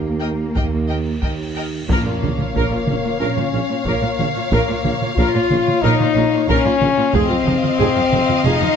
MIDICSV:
0, 0, Header, 1, 12, 480
1, 0, Start_track
1, 0, Tempo, 673401
1, 1349, Time_signature, 4, 2, 24, 8
1, 1349, Tempo, 656455
1, 6371, End_track
2, 0, Start_track
2, 0, Title_t, "Violin section"
2, 0, Program_c, 0, 48
2, 144, Note_on_c, 0, 79, 42
2, 201, Note_off_c, 0, 79, 0
2, 391, Note_on_c, 0, 79, 45
2, 448, Note_off_c, 0, 79, 0
2, 633, Note_on_c, 0, 79, 38
2, 690, Note_off_c, 0, 79, 0
2, 875, Note_on_c, 0, 79, 40
2, 932, Note_off_c, 0, 79, 0
2, 1114, Note_on_c, 0, 79, 39
2, 1171, Note_off_c, 0, 79, 0
2, 1351, Note_on_c, 0, 77, 55
2, 5161, Note_off_c, 0, 77, 0
2, 5178, Note_on_c, 0, 77, 80
2, 6371, Note_off_c, 0, 77, 0
2, 6371, End_track
3, 0, Start_track
3, 0, Title_t, "Violin section"
3, 0, Program_c, 1, 48
3, 147, Note_on_c, 1, 75, 39
3, 205, Note_off_c, 1, 75, 0
3, 402, Note_on_c, 1, 75, 42
3, 459, Note_off_c, 1, 75, 0
3, 630, Note_on_c, 1, 75, 42
3, 687, Note_off_c, 1, 75, 0
3, 883, Note_on_c, 1, 75, 40
3, 940, Note_off_c, 1, 75, 0
3, 1122, Note_on_c, 1, 75, 33
3, 1179, Note_off_c, 1, 75, 0
3, 1357, Note_on_c, 1, 73, 55
3, 5164, Note_off_c, 1, 73, 0
3, 5183, Note_on_c, 1, 75, 79
3, 6371, Note_off_c, 1, 75, 0
3, 6371, End_track
4, 0, Start_track
4, 0, Title_t, "Viola section"
4, 0, Program_c, 2, 48
4, 145, Note_on_c, 2, 70, 41
4, 202, Note_off_c, 2, 70, 0
4, 398, Note_on_c, 2, 70, 40
4, 455, Note_off_c, 2, 70, 0
4, 644, Note_on_c, 2, 70, 29
4, 701, Note_off_c, 2, 70, 0
4, 873, Note_on_c, 2, 70, 39
4, 930, Note_off_c, 2, 70, 0
4, 1114, Note_on_c, 2, 70, 44
4, 1171, Note_off_c, 2, 70, 0
4, 1365, Note_on_c, 2, 70, 64
4, 1470, Note_off_c, 2, 70, 0
4, 1480, Note_on_c, 2, 65, 39
4, 1526, Note_off_c, 2, 65, 0
4, 1593, Note_on_c, 2, 61, 43
4, 1640, Note_off_c, 2, 61, 0
4, 1717, Note_on_c, 2, 65, 42
4, 1764, Note_off_c, 2, 65, 0
4, 1836, Note_on_c, 2, 70, 70
4, 1945, Note_off_c, 2, 70, 0
4, 1958, Note_on_c, 2, 65, 45
4, 2004, Note_off_c, 2, 65, 0
4, 2085, Note_on_c, 2, 61, 55
4, 2130, Note_off_c, 2, 61, 0
4, 2198, Note_on_c, 2, 65, 49
4, 2244, Note_off_c, 2, 65, 0
4, 2305, Note_on_c, 2, 70, 60
4, 2419, Note_off_c, 2, 70, 0
4, 2426, Note_on_c, 2, 65, 43
4, 2475, Note_off_c, 2, 65, 0
4, 2552, Note_on_c, 2, 61, 43
4, 2600, Note_off_c, 2, 61, 0
4, 2667, Note_on_c, 2, 65, 42
4, 2716, Note_off_c, 2, 65, 0
4, 2793, Note_on_c, 2, 70, 60
4, 2903, Note_off_c, 2, 70, 0
4, 2912, Note_on_c, 2, 65, 55
4, 2960, Note_off_c, 2, 65, 0
4, 3027, Note_on_c, 2, 61, 53
4, 3075, Note_off_c, 2, 61, 0
4, 3146, Note_on_c, 2, 65, 60
4, 3195, Note_off_c, 2, 65, 0
4, 3269, Note_on_c, 2, 70, 73
4, 3381, Note_off_c, 2, 70, 0
4, 3398, Note_on_c, 2, 65, 51
4, 3445, Note_off_c, 2, 65, 0
4, 3514, Note_on_c, 2, 61, 51
4, 3562, Note_off_c, 2, 61, 0
4, 3635, Note_on_c, 2, 65, 59
4, 3683, Note_off_c, 2, 65, 0
4, 3761, Note_on_c, 2, 70, 70
4, 3870, Note_off_c, 2, 70, 0
4, 3881, Note_on_c, 2, 65, 46
4, 3928, Note_off_c, 2, 65, 0
4, 3997, Note_on_c, 2, 61, 59
4, 4044, Note_off_c, 2, 61, 0
4, 4107, Note_on_c, 2, 65, 67
4, 4157, Note_off_c, 2, 65, 0
4, 4232, Note_on_c, 2, 70, 85
4, 4345, Note_off_c, 2, 70, 0
4, 4350, Note_on_c, 2, 65, 64
4, 4398, Note_off_c, 2, 65, 0
4, 4470, Note_on_c, 2, 61, 53
4, 4519, Note_off_c, 2, 61, 0
4, 4599, Note_on_c, 2, 65, 65
4, 4645, Note_off_c, 2, 65, 0
4, 4707, Note_on_c, 2, 70, 94
4, 4820, Note_off_c, 2, 70, 0
4, 4832, Note_on_c, 2, 65, 72
4, 4880, Note_off_c, 2, 65, 0
4, 4952, Note_on_c, 2, 61, 82
4, 5000, Note_off_c, 2, 61, 0
4, 5066, Note_on_c, 2, 65, 78
4, 5114, Note_off_c, 2, 65, 0
4, 5177, Note_on_c, 2, 68, 95
4, 5294, Note_off_c, 2, 68, 0
4, 5297, Note_on_c, 2, 65, 59
4, 5347, Note_off_c, 2, 65, 0
4, 5411, Note_on_c, 2, 63, 68
4, 5462, Note_off_c, 2, 63, 0
4, 5535, Note_on_c, 2, 65, 79
4, 5586, Note_off_c, 2, 65, 0
4, 5654, Note_on_c, 2, 68, 85
4, 5768, Note_on_c, 2, 65, 59
4, 5772, Note_off_c, 2, 68, 0
4, 5820, Note_off_c, 2, 65, 0
4, 5899, Note_on_c, 2, 63, 64
4, 5949, Note_off_c, 2, 63, 0
4, 6005, Note_on_c, 2, 65, 63
4, 6057, Note_off_c, 2, 65, 0
4, 6129, Note_on_c, 2, 68, 81
4, 6250, Note_off_c, 2, 68, 0
4, 6265, Note_on_c, 2, 65, 74
4, 6314, Note_off_c, 2, 65, 0
4, 6371, End_track
5, 0, Start_track
5, 0, Title_t, "French horn section"
5, 0, Program_c, 3, 60
5, 0, Note_on_c, 3, 67, 59
5, 0, Note_on_c, 3, 70, 66
5, 1084, Note_off_c, 3, 70, 0
5, 1085, Note_off_c, 3, 67, 0
5, 1356, Note_on_c, 3, 58, 78
5, 2285, Note_off_c, 3, 58, 0
5, 2296, Note_on_c, 3, 61, 84
5, 2775, Note_on_c, 3, 58, 75
5, 2783, Note_off_c, 3, 61, 0
5, 3238, Note_off_c, 3, 58, 0
5, 3247, Note_on_c, 3, 58, 82
5, 3731, Note_on_c, 3, 65, 113
5, 3734, Note_off_c, 3, 58, 0
5, 4213, Note_off_c, 3, 65, 0
5, 4217, Note_on_c, 3, 63, 121
5, 4703, Note_off_c, 3, 63, 0
5, 4711, Note_on_c, 3, 61, 113
5, 5179, Note_off_c, 3, 61, 0
5, 5194, Note_on_c, 3, 60, 113
5, 6150, Note_off_c, 3, 60, 0
5, 6160, Note_on_c, 3, 63, 125
5, 6371, Note_off_c, 3, 63, 0
5, 6371, End_track
6, 0, Start_track
6, 0, Title_t, "Cello section"
6, 0, Program_c, 4, 48
6, 0, Note_on_c, 4, 58, 50
6, 873, Note_off_c, 4, 58, 0
6, 1345, Note_on_c, 4, 46, 68
6, 1394, Note_off_c, 4, 46, 0
6, 1468, Note_on_c, 4, 46, 49
6, 1517, Note_off_c, 4, 46, 0
6, 1587, Note_on_c, 4, 46, 49
6, 1635, Note_off_c, 4, 46, 0
6, 1709, Note_on_c, 4, 46, 44
6, 1757, Note_off_c, 4, 46, 0
6, 1831, Note_on_c, 4, 46, 69
6, 1879, Note_off_c, 4, 46, 0
6, 1947, Note_on_c, 4, 46, 49
6, 1995, Note_off_c, 4, 46, 0
6, 2067, Note_on_c, 4, 46, 48
6, 2116, Note_off_c, 4, 46, 0
6, 2191, Note_on_c, 4, 46, 45
6, 2239, Note_off_c, 4, 46, 0
6, 2306, Note_on_c, 4, 46, 66
6, 2355, Note_off_c, 4, 46, 0
6, 2434, Note_on_c, 4, 46, 55
6, 2481, Note_off_c, 4, 46, 0
6, 2549, Note_on_c, 4, 46, 47
6, 2597, Note_off_c, 4, 46, 0
6, 2672, Note_on_c, 4, 46, 50
6, 2719, Note_off_c, 4, 46, 0
6, 2788, Note_on_c, 4, 46, 74
6, 2836, Note_off_c, 4, 46, 0
6, 2908, Note_on_c, 4, 46, 49
6, 2956, Note_off_c, 4, 46, 0
6, 3027, Note_on_c, 4, 46, 55
6, 3075, Note_off_c, 4, 46, 0
6, 3152, Note_on_c, 4, 46, 46
6, 3199, Note_off_c, 4, 46, 0
6, 3268, Note_on_c, 4, 46, 80
6, 3316, Note_off_c, 4, 46, 0
6, 3390, Note_on_c, 4, 46, 57
6, 3439, Note_off_c, 4, 46, 0
6, 3514, Note_on_c, 4, 46, 58
6, 3563, Note_off_c, 4, 46, 0
6, 3636, Note_on_c, 4, 46, 59
6, 3684, Note_off_c, 4, 46, 0
6, 3752, Note_on_c, 4, 46, 88
6, 3801, Note_off_c, 4, 46, 0
6, 3875, Note_on_c, 4, 46, 63
6, 3923, Note_off_c, 4, 46, 0
6, 3996, Note_on_c, 4, 46, 62
6, 4044, Note_off_c, 4, 46, 0
6, 4107, Note_on_c, 4, 46, 55
6, 4157, Note_off_c, 4, 46, 0
6, 4235, Note_on_c, 4, 46, 82
6, 4283, Note_off_c, 4, 46, 0
6, 4358, Note_on_c, 4, 46, 62
6, 4405, Note_off_c, 4, 46, 0
6, 4472, Note_on_c, 4, 46, 65
6, 4520, Note_off_c, 4, 46, 0
6, 4593, Note_on_c, 4, 46, 61
6, 4641, Note_off_c, 4, 46, 0
6, 4707, Note_on_c, 4, 46, 95
6, 4756, Note_off_c, 4, 46, 0
6, 4828, Note_on_c, 4, 46, 66
6, 4876, Note_off_c, 4, 46, 0
6, 4945, Note_on_c, 4, 46, 70
6, 4994, Note_off_c, 4, 46, 0
6, 5067, Note_on_c, 4, 46, 62
6, 5115, Note_off_c, 4, 46, 0
6, 5184, Note_on_c, 4, 41, 102
6, 5233, Note_off_c, 4, 41, 0
6, 5307, Note_on_c, 4, 41, 69
6, 5355, Note_off_c, 4, 41, 0
6, 5431, Note_on_c, 4, 41, 61
6, 5479, Note_off_c, 4, 41, 0
6, 5552, Note_on_c, 4, 41, 73
6, 5599, Note_off_c, 4, 41, 0
6, 5670, Note_on_c, 4, 41, 101
6, 5717, Note_off_c, 4, 41, 0
6, 5787, Note_on_c, 4, 41, 63
6, 5835, Note_off_c, 4, 41, 0
6, 5909, Note_on_c, 4, 41, 72
6, 5957, Note_off_c, 4, 41, 0
6, 6030, Note_on_c, 4, 41, 57
6, 6078, Note_off_c, 4, 41, 0
6, 6145, Note_on_c, 4, 41, 99
6, 6194, Note_off_c, 4, 41, 0
6, 6264, Note_on_c, 4, 41, 62
6, 6313, Note_off_c, 4, 41, 0
6, 6371, End_track
7, 0, Start_track
7, 0, Title_t, "Timpani"
7, 0, Program_c, 5, 47
7, 1347, Note_on_c, 5, 46, 81
7, 2040, Note_off_c, 5, 46, 0
7, 6371, End_track
8, 0, Start_track
8, 0, Title_t, "Double bass section"
8, 0, Program_c, 6, 48
8, 0, Note_on_c, 6, 39, 39
8, 337, Note_off_c, 6, 39, 0
8, 396, Note_on_c, 6, 39, 52
8, 816, Note_off_c, 6, 39, 0
8, 878, Note_on_c, 6, 39, 47
8, 1298, Note_off_c, 6, 39, 0
8, 1352, Note_on_c, 6, 34, 70
8, 1400, Note_off_c, 6, 34, 0
8, 1601, Note_on_c, 6, 34, 45
8, 1647, Note_off_c, 6, 34, 0
8, 1836, Note_on_c, 6, 34, 62
8, 1883, Note_off_c, 6, 34, 0
8, 2071, Note_on_c, 6, 34, 45
8, 2119, Note_off_c, 6, 34, 0
8, 2307, Note_on_c, 6, 34, 74
8, 2356, Note_off_c, 6, 34, 0
8, 2552, Note_on_c, 6, 34, 49
8, 2599, Note_off_c, 6, 34, 0
8, 2788, Note_on_c, 6, 34, 67
8, 2836, Note_off_c, 6, 34, 0
8, 3023, Note_on_c, 6, 34, 52
8, 3072, Note_off_c, 6, 34, 0
8, 3268, Note_on_c, 6, 34, 85
8, 3317, Note_off_c, 6, 34, 0
8, 3509, Note_on_c, 6, 34, 54
8, 3558, Note_off_c, 6, 34, 0
8, 3753, Note_on_c, 6, 34, 74
8, 3802, Note_off_c, 6, 34, 0
8, 3994, Note_on_c, 6, 34, 57
8, 4042, Note_off_c, 6, 34, 0
8, 4235, Note_on_c, 6, 34, 93
8, 4283, Note_off_c, 6, 34, 0
8, 4466, Note_on_c, 6, 34, 64
8, 4515, Note_off_c, 6, 34, 0
8, 4708, Note_on_c, 6, 34, 93
8, 4757, Note_off_c, 6, 34, 0
8, 4942, Note_on_c, 6, 34, 56
8, 4992, Note_off_c, 6, 34, 0
8, 5189, Note_on_c, 6, 29, 101
8, 5237, Note_off_c, 6, 29, 0
8, 5424, Note_on_c, 6, 29, 68
8, 5473, Note_off_c, 6, 29, 0
8, 5662, Note_on_c, 6, 29, 73
8, 5711, Note_off_c, 6, 29, 0
8, 5898, Note_on_c, 6, 29, 59
8, 5948, Note_off_c, 6, 29, 0
8, 6146, Note_on_c, 6, 29, 102
8, 6195, Note_off_c, 6, 29, 0
8, 6371, End_track
9, 0, Start_track
9, 0, Title_t, "Tuba"
9, 0, Program_c, 7, 58
9, 0, Note_on_c, 7, 39, 54
9, 335, Note_off_c, 7, 39, 0
9, 401, Note_on_c, 7, 39, 43
9, 818, Note_off_c, 7, 39, 0
9, 876, Note_on_c, 7, 39, 45
9, 1297, Note_off_c, 7, 39, 0
9, 1348, Note_on_c, 7, 34, 70
9, 1396, Note_off_c, 7, 34, 0
9, 1597, Note_on_c, 7, 34, 55
9, 1644, Note_off_c, 7, 34, 0
9, 1831, Note_on_c, 7, 34, 75
9, 1879, Note_off_c, 7, 34, 0
9, 2074, Note_on_c, 7, 34, 44
9, 2121, Note_off_c, 7, 34, 0
9, 2301, Note_on_c, 7, 34, 64
9, 2351, Note_off_c, 7, 34, 0
9, 2548, Note_on_c, 7, 34, 56
9, 2597, Note_off_c, 7, 34, 0
9, 2787, Note_on_c, 7, 34, 61
9, 2835, Note_off_c, 7, 34, 0
9, 3031, Note_on_c, 7, 34, 55
9, 3078, Note_off_c, 7, 34, 0
9, 3264, Note_on_c, 7, 34, 84
9, 3314, Note_off_c, 7, 34, 0
9, 3510, Note_on_c, 7, 34, 56
9, 3559, Note_off_c, 7, 34, 0
9, 3752, Note_on_c, 7, 34, 83
9, 3801, Note_off_c, 7, 34, 0
9, 3990, Note_on_c, 7, 34, 61
9, 4039, Note_off_c, 7, 34, 0
9, 4229, Note_on_c, 7, 34, 80
9, 4278, Note_off_c, 7, 34, 0
9, 4472, Note_on_c, 7, 34, 74
9, 4520, Note_off_c, 7, 34, 0
9, 4706, Note_on_c, 7, 34, 81
9, 4755, Note_off_c, 7, 34, 0
9, 4950, Note_on_c, 7, 34, 71
9, 4998, Note_off_c, 7, 34, 0
9, 5182, Note_on_c, 7, 29, 90
9, 5231, Note_off_c, 7, 29, 0
9, 5428, Note_on_c, 7, 29, 70
9, 5476, Note_off_c, 7, 29, 0
9, 5663, Note_on_c, 7, 29, 96
9, 5712, Note_off_c, 7, 29, 0
9, 5902, Note_on_c, 7, 29, 64
9, 5951, Note_off_c, 7, 29, 0
9, 6138, Note_on_c, 7, 29, 74
9, 6188, Note_off_c, 7, 29, 0
9, 6371, End_track
10, 0, Start_track
10, 0, Title_t, "Cymbal swell"
10, 0, Program_c, 8, 119
10, 0, Note_on_c, 8, 60, 41
10, 1351, Note_off_c, 8, 60, 0
10, 6371, End_track
11, 0, Start_track
11, 0, Title_t, "Sub drop"
11, 0, Program_c, 10, 103
11, 1348, Note_on_c, 10, 60, 60
11, 3268, Note_off_c, 10, 60, 0
11, 6371, End_track
12, 0, Start_track
12, 0, Title_t, "Taiko and cinematic ensemble drums"
12, 395, Note_on_c, 9, 41, 70
12, 466, Note_off_c, 9, 41, 0
12, 870, Note_on_c, 9, 41, 59
12, 941, Note_off_c, 9, 41, 0
12, 1350, Note_on_c, 9, 41, 82
12, 1423, Note_off_c, 9, 41, 0
12, 1595, Note_on_c, 9, 47, 60
12, 1668, Note_off_c, 9, 47, 0
12, 1712, Note_on_c, 9, 47, 42
12, 1785, Note_off_c, 9, 47, 0
12, 1830, Note_on_c, 9, 41, 67
12, 1903, Note_off_c, 9, 41, 0
12, 2069, Note_on_c, 9, 47, 54
12, 2142, Note_off_c, 9, 47, 0
12, 2189, Note_on_c, 9, 47, 41
12, 2262, Note_off_c, 9, 47, 0
12, 2427, Note_on_c, 9, 47, 49
12, 2500, Note_off_c, 9, 47, 0
12, 2784, Note_on_c, 9, 41, 72
12, 2857, Note_off_c, 9, 41, 0
12, 3029, Note_on_c, 9, 47, 59
12, 3103, Note_off_c, 9, 47, 0
12, 3270, Note_on_c, 9, 41, 86
12, 3344, Note_off_c, 9, 41, 0
12, 3512, Note_on_c, 9, 47, 55
12, 3585, Note_off_c, 9, 47, 0
12, 3632, Note_on_c, 9, 47, 45
12, 3705, Note_off_c, 9, 47, 0
12, 3745, Note_on_c, 9, 41, 71
12, 3819, Note_off_c, 9, 41, 0
12, 3988, Note_on_c, 9, 47, 55
12, 4062, Note_off_c, 9, 47, 0
12, 4116, Note_on_c, 9, 47, 46
12, 4190, Note_off_c, 9, 47, 0
12, 4355, Note_on_c, 9, 47, 49
12, 4428, Note_off_c, 9, 47, 0
12, 4714, Note_on_c, 9, 41, 75
12, 4787, Note_off_c, 9, 41, 0
12, 4949, Note_on_c, 9, 47, 60
12, 5022, Note_off_c, 9, 47, 0
12, 5188, Note_on_c, 9, 41, 88
12, 5261, Note_off_c, 9, 41, 0
12, 5429, Note_on_c, 9, 47, 68
12, 5502, Note_off_c, 9, 47, 0
12, 5549, Note_on_c, 9, 47, 54
12, 5622, Note_off_c, 9, 47, 0
12, 5662, Note_on_c, 9, 41, 76
12, 5736, Note_off_c, 9, 41, 0
12, 5906, Note_on_c, 9, 47, 56
12, 5979, Note_off_c, 9, 47, 0
12, 6026, Note_on_c, 9, 47, 48
12, 6099, Note_off_c, 9, 47, 0
12, 6268, Note_on_c, 9, 47, 44
12, 6341, Note_off_c, 9, 47, 0
12, 6371, End_track
0, 0, End_of_file